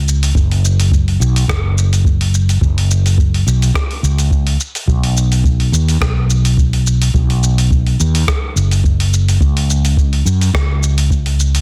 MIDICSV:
0, 0, Header, 1, 3, 480
1, 0, Start_track
1, 0, Tempo, 566038
1, 298, Time_signature, 4, 2, 24, 8
1, 9846, End_track
2, 0, Start_track
2, 0, Title_t, "Fretless electric bass"
2, 0, Program_c, 0, 35
2, 0, Note_on_c, 0, 37, 88
2, 266, Note_off_c, 0, 37, 0
2, 295, Note_on_c, 0, 30, 105
2, 984, Note_off_c, 0, 30, 0
2, 1018, Note_on_c, 0, 35, 98
2, 1218, Note_off_c, 0, 35, 0
2, 2216, Note_on_c, 0, 30, 95
2, 2905, Note_off_c, 0, 30, 0
2, 2939, Note_on_c, 0, 35, 97
2, 3138, Note_off_c, 0, 35, 0
2, 3417, Note_on_c, 0, 37, 90
2, 3865, Note_off_c, 0, 37, 0
2, 4135, Note_on_c, 0, 35, 104
2, 4825, Note_off_c, 0, 35, 0
2, 4852, Note_on_c, 0, 39, 99
2, 5055, Note_off_c, 0, 39, 0
2, 5093, Note_on_c, 0, 35, 87
2, 6023, Note_off_c, 0, 35, 0
2, 6056, Note_on_c, 0, 35, 94
2, 6745, Note_off_c, 0, 35, 0
2, 6783, Note_on_c, 0, 39, 101
2, 6980, Note_off_c, 0, 39, 0
2, 7256, Note_on_c, 0, 30, 89
2, 7945, Note_off_c, 0, 30, 0
2, 7975, Note_on_c, 0, 37, 102
2, 8665, Note_off_c, 0, 37, 0
2, 8696, Note_on_c, 0, 42, 97
2, 8897, Note_off_c, 0, 42, 0
2, 8936, Note_on_c, 0, 37, 92
2, 9846, Note_off_c, 0, 37, 0
2, 9846, End_track
3, 0, Start_track
3, 0, Title_t, "Drums"
3, 72, Note_on_c, 9, 82, 85
3, 156, Note_off_c, 9, 82, 0
3, 194, Note_on_c, 9, 46, 55
3, 199, Note_on_c, 9, 82, 47
3, 279, Note_off_c, 9, 46, 0
3, 284, Note_off_c, 9, 82, 0
3, 296, Note_on_c, 9, 36, 110
3, 311, Note_on_c, 9, 82, 33
3, 381, Note_off_c, 9, 36, 0
3, 396, Note_off_c, 9, 82, 0
3, 437, Note_on_c, 9, 46, 41
3, 521, Note_off_c, 9, 46, 0
3, 551, Note_on_c, 9, 82, 85
3, 636, Note_off_c, 9, 82, 0
3, 675, Note_on_c, 9, 46, 54
3, 680, Note_on_c, 9, 82, 48
3, 759, Note_off_c, 9, 46, 0
3, 764, Note_off_c, 9, 82, 0
3, 776, Note_on_c, 9, 36, 109
3, 791, Note_on_c, 9, 82, 35
3, 861, Note_off_c, 9, 36, 0
3, 876, Note_off_c, 9, 82, 0
3, 916, Note_on_c, 9, 46, 29
3, 1000, Note_off_c, 9, 46, 0
3, 1032, Note_on_c, 9, 82, 89
3, 1117, Note_off_c, 9, 82, 0
3, 1155, Note_on_c, 9, 46, 58
3, 1160, Note_on_c, 9, 82, 48
3, 1240, Note_off_c, 9, 46, 0
3, 1245, Note_off_c, 9, 82, 0
3, 1257, Note_on_c, 9, 36, 112
3, 1267, Note_on_c, 9, 37, 90
3, 1272, Note_on_c, 9, 82, 39
3, 1341, Note_off_c, 9, 36, 0
3, 1352, Note_off_c, 9, 37, 0
3, 1357, Note_off_c, 9, 82, 0
3, 1511, Note_on_c, 9, 82, 85
3, 1595, Note_off_c, 9, 82, 0
3, 1635, Note_on_c, 9, 46, 54
3, 1640, Note_on_c, 9, 82, 46
3, 1720, Note_off_c, 9, 46, 0
3, 1725, Note_off_c, 9, 82, 0
3, 1736, Note_on_c, 9, 36, 106
3, 1750, Note_on_c, 9, 82, 36
3, 1821, Note_off_c, 9, 36, 0
3, 1835, Note_off_c, 9, 82, 0
3, 1873, Note_on_c, 9, 46, 43
3, 1958, Note_off_c, 9, 46, 0
3, 1988, Note_on_c, 9, 82, 86
3, 2073, Note_off_c, 9, 82, 0
3, 2113, Note_on_c, 9, 46, 53
3, 2118, Note_on_c, 9, 82, 46
3, 2198, Note_off_c, 9, 46, 0
3, 2203, Note_off_c, 9, 82, 0
3, 2216, Note_on_c, 9, 36, 100
3, 2228, Note_on_c, 9, 82, 31
3, 2300, Note_off_c, 9, 36, 0
3, 2313, Note_off_c, 9, 82, 0
3, 2356, Note_on_c, 9, 46, 42
3, 2441, Note_off_c, 9, 46, 0
3, 2467, Note_on_c, 9, 82, 83
3, 2552, Note_off_c, 9, 82, 0
3, 2593, Note_on_c, 9, 46, 53
3, 2598, Note_on_c, 9, 82, 43
3, 2678, Note_off_c, 9, 46, 0
3, 2683, Note_off_c, 9, 82, 0
3, 2695, Note_on_c, 9, 36, 101
3, 2710, Note_on_c, 9, 82, 33
3, 2780, Note_off_c, 9, 36, 0
3, 2795, Note_off_c, 9, 82, 0
3, 2836, Note_on_c, 9, 46, 29
3, 2920, Note_off_c, 9, 46, 0
3, 2949, Note_on_c, 9, 82, 85
3, 3034, Note_off_c, 9, 82, 0
3, 3072, Note_on_c, 9, 46, 52
3, 3077, Note_on_c, 9, 82, 46
3, 3157, Note_off_c, 9, 46, 0
3, 3162, Note_off_c, 9, 82, 0
3, 3175, Note_on_c, 9, 36, 117
3, 3184, Note_on_c, 9, 37, 89
3, 3189, Note_on_c, 9, 82, 39
3, 3260, Note_off_c, 9, 36, 0
3, 3269, Note_off_c, 9, 37, 0
3, 3274, Note_off_c, 9, 82, 0
3, 3313, Note_on_c, 9, 46, 31
3, 3397, Note_off_c, 9, 46, 0
3, 3429, Note_on_c, 9, 82, 86
3, 3514, Note_off_c, 9, 82, 0
3, 3549, Note_on_c, 9, 46, 49
3, 3554, Note_on_c, 9, 82, 49
3, 3633, Note_off_c, 9, 46, 0
3, 3639, Note_off_c, 9, 82, 0
3, 3655, Note_on_c, 9, 36, 107
3, 3666, Note_on_c, 9, 82, 35
3, 3740, Note_off_c, 9, 36, 0
3, 3750, Note_off_c, 9, 82, 0
3, 3787, Note_on_c, 9, 46, 44
3, 3872, Note_off_c, 9, 46, 0
3, 3904, Note_on_c, 9, 82, 81
3, 3989, Note_off_c, 9, 82, 0
3, 4029, Note_on_c, 9, 46, 52
3, 4034, Note_on_c, 9, 82, 47
3, 4114, Note_off_c, 9, 46, 0
3, 4119, Note_off_c, 9, 82, 0
3, 4135, Note_on_c, 9, 36, 105
3, 4148, Note_on_c, 9, 82, 33
3, 4219, Note_off_c, 9, 36, 0
3, 4232, Note_off_c, 9, 82, 0
3, 4269, Note_on_c, 9, 46, 41
3, 4354, Note_off_c, 9, 46, 0
3, 4386, Note_on_c, 9, 82, 77
3, 4470, Note_off_c, 9, 82, 0
3, 4509, Note_on_c, 9, 46, 54
3, 4514, Note_on_c, 9, 82, 44
3, 4594, Note_off_c, 9, 46, 0
3, 4599, Note_off_c, 9, 82, 0
3, 4614, Note_on_c, 9, 36, 101
3, 4625, Note_on_c, 9, 82, 31
3, 4699, Note_off_c, 9, 36, 0
3, 4710, Note_off_c, 9, 82, 0
3, 4748, Note_on_c, 9, 46, 28
3, 4833, Note_off_c, 9, 46, 0
3, 4866, Note_on_c, 9, 82, 82
3, 4951, Note_off_c, 9, 82, 0
3, 4990, Note_on_c, 9, 46, 54
3, 4995, Note_on_c, 9, 82, 45
3, 5075, Note_off_c, 9, 46, 0
3, 5080, Note_off_c, 9, 82, 0
3, 5095, Note_on_c, 9, 36, 109
3, 5101, Note_on_c, 9, 37, 84
3, 5106, Note_on_c, 9, 82, 37
3, 5179, Note_off_c, 9, 36, 0
3, 5186, Note_off_c, 9, 37, 0
3, 5191, Note_off_c, 9, 82, 0
3, 5344, Note_on_c, 9, 82, 82
3, 5429, Note_off_c, 9, 82, 0
3, 5469, Note_on_c, 9, 46, 54
3, 5474, Note_on_c, 9, 82, 42
3, 5554, Note_off_c, 9, 46, 0
3, 5559, Note_off_c, 9, 82, 0
3, 5575, Note_on_c, 9, 36, 108
3, 5585, Note_on_c, 9, 82, 35
3, 5660, Note_off_c, 9, 36, 0
3, 5670, Note_off_c, 9, 82, 0
3, 5709, Note_on_c, 9, 46, 45
3, 5794, Note_off_c, 9, 46, 0
3, 5824, Note_on_c, 9, 82, 79
3, 5909, Note_off_c, 9, 82, 0
3, 5949, Note_on_c, 9, 46, 54
3, 5954, Note_on_c, 9, 82, 45
3, 6034, Note_off_c, 9, 46, 0
3, 6039, Note_off_c, 9, 82, 0
3, 6055, Note_on_c, 9, 36, 102
3, 6065, Note_on_c, 9, 82, 31
3, 6140, Note_off_c, 9, 36, 0
3, 6150, Note_off_c, 9, 82, 0
3, 6190, Note_on_c, 9, 46, 42
3, 6275, Note_off_c, 9, 46, 0
3, 6304, Note_on_c, 9, 82, 82
3, 6389, Note_off_c, 9, 82, 0
3, 6430, Note_on_c, 9, 46, 52
3, 6435, Note_on_c, 9, 82, 39
3, 6515, Note_off_c, 9, 46, 0
3, 6520, Note_off_c, 9, 82, 0
3, 6536, Note_on_c, 9, 36, 99
3, 6547, Note_on_c, 9, 82, 33
3, 6621, Note_off_c, 9, 36, 0
3, 6632, Note_off_c, 9, 82, 0
3, 6670, Note_on_c, 9, 46, 30
3, 6754, Note_off_c, 9, 46, 0
3, 6786, Note_on_c, 9, 82, 79
3, 6871, Note_off_c, 9, 82, 0
3, 6910, Note_on_c, 9, 46, 58
3, 6915, Note_on_c, 9, 82, 46
3, 6994, Note_off_c, 9, 46, 0
3, 6999, Note_off_c, 9, 82, 0
3, 7017, Note_on_c, 9, 36, 109
3, 7022, Note_on_c, 9, 37, 90
3, 7027, Note_on_c, 9, 82, 38
3, 7102, Note_off_c, 9, 36, 0
3, 7107, Note_off_c, 9, 37, 0
3, 7112, Note_off_c, 9, 82, 0
3, 7266, Note_on_c, 9, 82, 79
3, 7351, Note_off_c, 9, 82, 0
3, 7390, Note_on_c, 9, 46, 55
3, 7395, Note_on_c, 9, 82, 44
3, 7475, Note_off_c, 9, 46, 0
3, 7480, Note_off_c, 9, 82, 0
3, 7496, Note_on_c, 9, 36, 96
3, 7508, Note_on_c, 9, 82, 35
3, 7581, Note_off_c, 9, 36, 0
3, 7592, Note_off_c, 9, 82, 0
3, 7633, Note_on_c, 9, 46, 47
3, 7717, Note_off_c, 9, 46, 0
3, 7747, Note_on_c, 9, 82, 78
3, 7832, Note_off_c, 9, 82, 0
3, 7874, Note_on_c, 9, 46, 54
3, 7879, Note_on_c, 9, 82, 44
3, 7958, Note_off_c, 9, 46, 0
3, 7963, Note_off_c, 9, 82, 0
3, 7977, Note_on_c, 9, 36, 96
3, 7987, Note_on_c, 9, 82, 29
3, 8062, Note_off_c, 9, 36, 0
3, 8072, Note_off_c, 9, 82, 0
3, 8113, Note_on_c, 9, 46, 47
3, 8198, Note_off_c, 9, 46, 0
3, 8227, Note_on_c, 9, 82, 72
3, 8312, Note_off_c, 9, 82, 0
3, 8350, Note_on_c, 9, 46, 55
3, 8355, Note_on_c, 9, 82, 41
3, 8435, Note_off_c, 9, 46, 0
3, 8440, Note_off_c, 9, 82, 0
3, 8456, Note_on_c, 9, 36, 102
3, 8467, Note_on_c, 9, 82, 33
3, 8541, Note_off_c, 9, 36, 0
3, 8552, Note_off_c, 9, 82, 0
3, 8589, Note_on_c, 9, 46, 30
3, 8673, Note_off_c, 9, 46, 0
3, 8706, Note_on_c, 9, 82, 80
3, 8791, Note_off_c, 9, 82, 0
3, 8831, Note_on_c, 9, 46, 59
3, 8836, Note_on_c, 9, 82, 45
3, 8916, Note_off_c, 9, 46, 0
3, 8921, Note_off_c, 9, 82, 0
3, 8936, Note_on_c, 9, 36, 112
3, 8943, Note_on_c, 9, 37, 84
3, 8948, Note_on_c, 9, 82, 36
3, 9021, Note_off_c, 9, 36, 0
3, 9028, Note_off_c, 9, 37, 0
3, 9033, Note_off_c, 9, 82, 0
3, 9186, Note_on_c, 9, 82, 83
3, 9270, Note_off_c, 9, 82, 0
3, 9310, Note_on_c, 9, 46, 62
3, 9315, Note_on_c, 9, 82, 41
3, 9394, Note_off_c, 9, 46, 0
3, 9399, Note_off_c, 9, 82, 0
3, 9416, Note_on_c, 9, 36, 100
3, 9425, Note_on_c, 9, 82, 33
3, 9501, Note_off_c, 9, 36, 0
3, 9510, Note_off_c, 9, 82, 0
3, 9548, Note_on_c, 9, 46, 51
3, 9633, Note_off_c, 9, 46, 0
3, 9666, Note_on_c, 9, 82, 75
3, 9751, Note_off_c, 9, 82, 0
3, 9792, Note_on_c, 9, 46, 60
3, 9797, Note_on_c, 9, 82, 43
3, 9846, Note_off_c, 9, 46, 0
3, 9846, Note_off_c, 9, 82, 0
3, 9846, End_track
0, 0, End_of_file